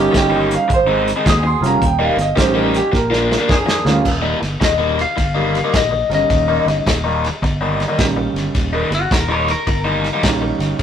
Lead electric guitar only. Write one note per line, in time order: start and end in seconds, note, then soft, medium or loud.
4.64 4.99 D#5 medium
5.01 5.73 F5 medium
5.76 6.11 D#5 medium
6.15 7.77 D#5 medium
8.95 9.11 F#4 medium
9.14 9.32 A#4 medium
9.32 9.49 C#5 medium
9.51 9.80 A#4 medium